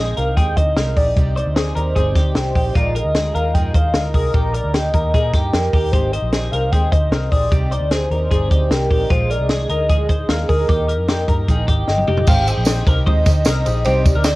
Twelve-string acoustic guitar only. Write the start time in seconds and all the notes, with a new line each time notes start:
Already playing: G#3 C4 D#4
0.00 G4
0.17 C4 D#4 G4
0.37 G#3 C4 D#4 G4
0.56 C4 D#4 G4
0.77 G#3 C4 D#4 G4
0.96 C4 D#4 G4
1.17 C3 G3 C4 D#4 G4 D5
1.37 C4 D#4 G4 D5
1.56 C4 D#4 G4 D5
1.76 C4 D#4 G4 D5
1.96 C3 G3 C4 D#4 G4 D5
2.16 C4 D#4 G4 D5
2.38 G4 D5
2.55 C4 D#4 G4 D5
2.75 A#2 D#3 G#3 D#4 F4 A#4
2.95 G#3 D#4 F4 A#4
3.15 G#3 D#4 F4 A#4
3.35 G#3 D#4 F4 A#4
3.55 A#2 D#3 G#3 D#4 F4 A#4
3.75 G#3 D#4 F4 A#4
3.95 G#3 D#4 F4 A#4
4.14 G#3 D#4 F4 A#4
4.33 A#2 D#3 A#3 D#4 G4 A#4
4.53 A#3 D#4 G4 A#4
4.73 A#3 G4 A#4
4.93 A#3 D#4 G4 A#4
5.13 A#2 D#3 A#3 D#4 G4 A#4
5.33 A#3 D#4 G4 A#4
5.53 A#3 D#4 G4 A#4
5.73 A#3 D#4 G4 A#4
5.93 G#3 C4 D#4 G4 C5
6.13 D#4 G4 C5
6.33 C4 D#4 G4 C5
6.53 D#4 G4 C5
6.72 G#3 C4 D#4 G4 C5
6.92 D#4 G4 C5
7.11 C4 D#4 G4 C5
7.32 D#4 G4 C5
7.51 C3 G3 C4 D#4 G4 D5
7.71 C4 D#4 G4 D5
7.91 C4 D#4 G4 D5
8.12 C4 D#4 G4 D5
8.32 C3 G3 C4 D#4 G4 D5
8.51 C4 D#4 G4 D5
8.71 C4 D#4 G4 D5
8.91 C4 D#4 G4 D5
9.10 A#2 F3 G#3 D#4 G#4
9.30 G#3 D#4 G#4
9.51 F3 G#3 D#4 G#4
9.70 G#3 D#4 G#4
9.90 A#2 F3 G#3 D#4 G#4
10.09 G#3 D#4 G#4
10.29 F3 G#3 D#4 G#4
10.49 G#3 D#4 G#4
10.68 D#3 A#3 D#4 G4
10.88 A#3 D#4 G4
11.08 D#3 A#3 D#4 G4
11.28 A#3 D#4 G4
11.49 D#3 A#3 D#4 G4
11.68 A#3 D#4 G4
11.88 D#3 A#3 D#4 G4
12.07 A#3 D#4 G4
12.27 G#3 C4 D#4 G4 C5
12.46 D#4 G4 C5
12.67 C4 D#4 G4 C5
12.87 D#4 G4 C5
13.06 G#3 C4 D#4 G4 C5
13.26 D#4 G4 C5
13.45 C4 D#4 G4 C5
13.65 D#4 G4 C5
13.84 C3 G3 C4 D#4 G4 D5
14.04 C4 D#4 G4 D5
14.24 C4 D#4 G4 D5